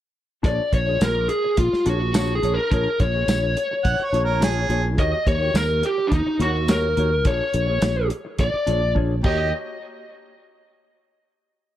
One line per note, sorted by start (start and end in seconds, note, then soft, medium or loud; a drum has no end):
0.43 0.58 A#1 medium
0.43 0.61 D4 medium
0.43 0.61 F4 medium
0.43 0.62 G#4 medium
0.43 0.62 C#5 medium
0.43 0.74 D5 medium
0.43 kick loud
0.43 closed hi-hat medium
0.72 0.99 A#1 medium
0.72 1.02 C#5 medium
0.72 muted clean electric guitar stroke soft
0.72 kick medium
0.72 closed hi-hat medium
0.87 1.00 F4 soft
0.87 1.00 G#4 soft
0.87 1.00 C#5 soft
1.00 1.27 A#1 medium
1.00 1.29 A#4 medium
1.00 muted clean electric guitar stroke soft
1.00 snare loud
1.00 closed hi-hat medium
1.00 tambourine loud
1.16 muted clean electric guitar stroke soft
1.29 1.56 G#4 medium
1.29 muted clean electric guitar stroke soft
1.29 closed hi-hat medium
1.44 muted clean electric guitar stroke soft
1.57 1.72 A#1 medium
1.57 1.87 F4 medium
1.57 kick medium
1.57 closed hi-hat medium
1.73 muted clean electric guitar stroke soft
1.73 muted fretless electric bass stroke soft
1.73 snare soft
1.86 2.39 A#1 medium
1.86 2.01 D4 medium
1.86 2.01 F4 medium
1.86 2.15 F#4 medium
1.86 2.01 G#4 medium
1.86 2.00 C#5 medium
1.86 closed hi-hat medium
2.01 muted clean electric guitar stroke soft
2.14 2.32 D4 medium
2.14 2.32 F4 medium
2.14 2.33 F#4 medium
2.14 2.33 G#4 medium
2.14 2.33 C#5 medium
2.14 snare loud
2.14 closed hi-hat medium
2.14 tambourine loud
2.35 2.54 G#4 medium
2.42 2.57 A#1 medium
2.42 2.57 D4 medium
2.42 2.58 F4 medium
2.42 2.58 G#4 medium
2.42 2.57 C#5 medium
2.42 closed hi-hat medium
2.54 2.70 A#4 medium
2.58 muted clean electric guitar stroke soft
2.71 2.85 A#1 medium
2.71 2.89 D4 medium
2.71 2.89 F4 medium
2.71 2.90 G#4 medium
2.71 3.00 A#4 medium
2.71 2.90 C#5 medium
2.71 kick medium
2.71 closed hi-hat medium
3.00 3.26 A#1 medium
3.00 4.66 C#5 medium
3.00 muted clean electric guitar stroke soft
3.00 kick medium
3.00 closed hi-hat medium
3.14 3.28 F4 soft
3.14 3.29 G#4 soft
3.14 3.28 C#5 soft
3.28 3.54 A#1 medium
3.28 muted clean electric guitar stroke soft
3.28 snare loud
3.28 closed hi-hat medium
3.28 tambourine loud
3.43 muted clean electric guitar stroke soft
3.57 muted clean electric guitar stroke soft
3.57 closed hi-hat medium
3.71 muted clean electric guitar stroke soft
3.84 3.98 A#1 medium
3.84 4.06 F#5 medium
3.84 kick medium
3.84 closed hi-hat medium
4.00 muted clean electric guitar stroke soft
4.04 4.22 C#5 medium
4.12 4.66 A#1 medium
4.12 4.28 D4 medium
4.12 4.29 F4 medium
4.12 4.28 G#4 medium
4.12 closed hi-hat soft
4.16 4.27 C#5 medium
4.25 4.42 A#4 medium
4.41 4.59 D4 medium
4.41 4.59 F4 medium
4.41 4.60 G#4 medium
4.41 4.85 G#4 medium
4.41 4.60 C#5 medium
4.41 snare medium
4.41 closed hi-hat medium
4.41 tambourine loud
4.69 4.98 A#1 medium
4.69 4.84 D4 medium
4.69 4.85 F4 medium
4.69 4.84 G#4 medium
4.69 4.83 C#5 medium
4.69 closed hi-hat soft
4.84 muted clean electric guitar stroke soft
4.98 5.12 D#2 loud
4.98 5.16 A#3 medium
4.98 5.16 F#4 medium
4.98 5.17 G4 medium
4.98 5.17 C#5 medium
4.98 5.26 D#5 medium
4.98 kick loud
4.98 closed hi-hat medium
5.26 5.53 D#2 medium
5.26 5.54 C#5 medium
5.26 muted clean electric guitar stroke soft
5.26 kick medium
5.26 closed hi-hat medium
5.41 5.53 F#4 soft
5.41 5.54 G4 soft
5.41 5.54 C#5 soft
5.54 5.81 D#2 medium
5.54 5.85 A#4 loud
5.54 muted clean electric guitar stroke soft
5.54 snare loud
5.54 closed hi-hat medium
5.54 tambourine loud
5.69 muted clean electric guitar stroke soft
5.82 muted clean electric guitar stroke soft
5.82 closed hi-hat medium
5.86 6.07 G4 medium
5.98 muted clean electric guitar stroke soft
6.07 6.13 D4 medium
6.12 6.25 D#2 medium
6.12 6.42 D#4 medium
6.12 kick medium
6.12 closed hi-hat medium
6.26 muted fretless electric bass stroke soft
6.26 muted clean electric guitar stroke soft
6.39 6.93 D#2 medium
6.39 6.55 A#3 medium
6.39 6.55 F#4 medium
6.39 6.71 F#4 medium
6.39 6.54 G4 medium
6.39 6.53 C#5 medium
6.39 closed hi-hat medium
6.68 6.86 A#3 medium
6.68 6.87 F#4 medium
6.68 6.87 G4 medium
6.68 7.28 A#4 medium
6.68 6.88 C#5 medium
6.68 snare loud
6.68 closed hi-hat medium
6.68 tambourine loud
6.97 7.25 D#2 medium
6.97 7.12 A#3 medium
6.97 7.13 F#4 medium
6.97 7.12 G4 medium
6.97 7.11 C#5 medium
6.97 closed hi-hat medium
7.25 7.40 A#1 medium
7.25 7.43 D4 medium
7.25 7.44 F4 medium
7.25 7.44 G#4 medium
7.25 8.08 C#5 medium
7.25 7.44 C#5 medium
7.25 kick loud
7.25 closed hi-hat medium
7.54 7.81 A#1 medium
7.54 muted clean electric guitar stroke soft
7.54 closed hi-hat medium
7.67 7.81 F4 soft
7.67 7.82 G#4 soft
7.67 7.82 C#5 soft
7.81 8.09 A#1 medium
7.81 muted clean electric guitar stroke soft
7.81 snare loud
7.81 closed hi-hat medium
7.81 tambourine medium
7.96 muted clean electric guitar stroke soft
8.09 muted clean electric guitar stroke soft
8.09 closed hi-hat medium
8.25 muted clean electric guitar stroke soft
8.38 8.53 A#1 medium
8.38 8.93 D5 loud
8.38 kick medium
8.38 closed hi-hat medium
8.53 muted fretless electric bass stroke soft
8.53 muted clean electric guitar stroke soft
8.66 9.21 A#1 medium
8.66 8.82 D4 medium
8.66 8.82 F4 medium
8.66 8.82 G#4 medium
8.66 8.80 C#5 medium
8.66 closed hi-hat medium
8.81 muted clean electric guitar stroke soft
8.95 9.13 D4 medium
8.95 9.14 F4 medium
8.95 9.14 G#4 medium
8.95 9.14 C#5 medium
8.95 kick medium
9.23 9.51 D#2 medium
9.23 9.47 A#3 medium
9.23 9.48 F#4 medium
9.23 9.51 G4 medium
9.23 9.48 G4 medium
9.23 9.48 C#5 medium
9.23 9.52 D#5 medium
9.23 kick loud
9.23 crash medium